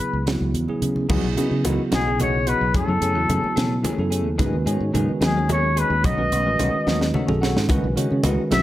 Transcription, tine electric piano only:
0.00 0.21 C#3 medium
0.00 0.21 F#3 medium
0.00 0.22 B3 medium
0.00 0.22 E4 medium
0.00 0.22 G#4 medium
0.26 0.64 C#3 medium
0.26 0.64 F#3 medium
0.26 0.64 B3 medium
0.26 0.64 E4 medium
0.26 0.64 F#4 medium
0.68 1.05 C#3 medium
0.68 1.05 F#3 medium
0.68 1.05 B3 medium
0.68 1.06 E4 medium
0.68 1.06 G#4 medium
1.09 1.34 C#3 medium
1.09 1.34 F#3 medium
1.09 1.34 B3 medium
1.09 1.35 E4 medium
1.09 1.35 G#4 loud
1.36 1.61 C#3 medium
1.36 1.62 F#3 medium
1.36 1.62 B3 medium
1.36 1.62 E4 medium
1.36 1.62 G#4 medium
1.64 2.01 C#3 medium
1.64 2.01 F#3 medium
1.64 2.02 B3 medium
1.64 2.02 E4 medium
1.64 2.02 F#4 medium
2.05 2.74 C#3 medium
2.05 2.75 F#3 medium
2.05 2.75 B3 medium
2.05 2.75 E4 medium
2.05 2.75 G#4 medium
2.87 3.12 C#3 medium
2.87 3.12 F#3 medium
2.87 3.13 B3 medium
2.87 3.13 E4 medium
2.87 3.13 A4 medium
3.15 3.89 C#3 medium
3.15 3.89 F#3 medium
3.15 3.89 B3 medium
3.15 3.89 E4 medium
3.15 3.89 F#4 medium
3.98 4.35 C#3 medium
3.98 4.35 F#3 medium
3.98 4.35 B3 medium
3.98 4.35 E4 medium
3.98 4.36 A4 medium
4.38 4.63 D#3 loud
4.38 4.64 G#3 medium
4.38 4.64 C#4 medium
4.38 4.64 F#4 medium
4.38 4.64 B4 loud
4.66 4.91 D#3 medium
4.66 4.91 G#3 medium
4.66 4.91 C#4 medium
4.66 4.92 F#4 medium
4.66 4.92 C#5 loud
4.94 5.31 D#3 medium
4.94 5.31 G#3 medium
4.94 5.31 C#4 medium
4.94 5.32 F#4 medium
4.94 5.32 B4 medium
5.35 6.04 D#3 medium
5.35 6.04 G#3 medium
5.35 6.05 C#4 medium
5.35 6.05 F#4 medium
5.35 6.05 C#5 medium
6.17 6.42 D#3 medium
6.17 6.42 G#3 medium
6.17 6.42 C#4 medium
6.17 6.43 F#4 medium
6.17 6.43 B4 medium
6.45 7.19 D#3 medium
6.45 7.19 G#3 medium
6.45 7.19 C#4 medium
6.45 7.19 F#4 medium
6.45 7.20 B4 medium
7.14 7.40 D#5 medium
7.27 7.64 D#3 medium
7.27 7.65 C#4 medium
7.27 7.65 F#4 medium
7.27 7.65 G#4 medium
7.27 7.65 A4 medium
7.41 7.67 F#5 medium
7.69 7.93 D#3 medium
7.69 7.94 G#3 medium
7.69 7.94 C#4 medium
7.69 7.94 F#4 medium
7.69 7.94 B4 loud
7.96 8.21 D#3 medium
7.96 8.21 G#3 medium
7.96 8.21 C#4 medium
7.96 8.21 F#4 medium
7.96 8.21 C#5 medium
8.23 8.61 D#3 medium
8.23 8.61 G#3 medium
8.23 8.61 C#4 medium
8.23 8.61 F#4 medium
8.23 8.61 B4 medium

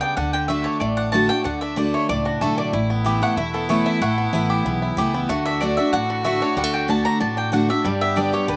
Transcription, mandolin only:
0.01 0.16 G5 loud
0.17 0.33 F#5 medium
0.33 0.48 G5 loud
0.48 0.65 E5 medium
0.64 0.80 C#5 medium
0.80 0.97 D5 medium
0.97 1.12 F#5 medium
1.12 1.29 A5 loud
1.29 1.44 G5 loud
1.44 1.61 F#5 medium
1.61 1.76 E5 medium
1.77 1.93 D5 medium
1.94 2.09 C#5 medium
2.09 2.25 D5 loud
2.25 2.40 F#4 medium
2.41 2.57 A4 medium
2.58 2.73 D5 medium
3.23 3.37 F#5 medium
3.37 3.53 E5 medium
3.54 3.69 A4 medium
3.69 3.86 C#5 medium
3.86 4.01 E5 medium
4.02 4.93 F#5 medium
5.29 5.45 F#5 medium
5.46 5.61 E5 loud
5.61 5.77 D5 medium
5.77 5.92 E5 medium
5.93 6.23 F#5 loud
6.24 6.41 E5 medium
6.42 6.57 C#5 medium
6.57 6.73 F#5 medium
6.74 6.89 G5 medium
6.90 7.05 A5 medium
7.05 7.20 A#5 loud
7.21 7.37 A5 medium
7.38 7.52 G5 medium
7.53 7.69 F#5 medium
7.70 7.85 E5 loud
7.84 8.01 D5 medium
8.01 8.16 E5 loud
8.17 8.33 D5 medium
8.34 8.48 C#5 medium
8.49 8.56 B4 medium

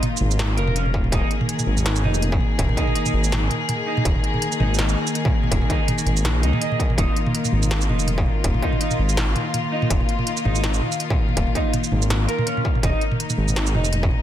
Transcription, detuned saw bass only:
0.21 0.59 G#1 medium
0.57 0.95 F1 medium
0.94 1.11 D#1 medium
1.12 1.22 D#1 loud
1.67 2.05 G#1 medium
2.03 2.39 F1 medium
2.59 2.68 D#1 loud
3.13 3.49 G#1 medium
4.05 4.14 D#1 loud
4.60 4.96 G#1 medium
5.51 5.61 D#1 loud
6.06 6.24 G#1 medium
6.24 6.44 A#1 medium
6.43 6.52 C#2 loud
6.98 7.07 D#1 loud
7.52 7.91 G#1 medium
7.89 8.25 F1 medium
8.44 8.54 D#1 loud
8.99 9.34 G#1 medium
9.90 10.00 D#1 loud
10.45 10.81 G#1 medium
11.37 11.46 D#1 loud
11.92 12.27 G#1 medium
12.83 12.92 D#1 loud
13.38 13.76 G#1 medium
13.74 14.10 F1 medium

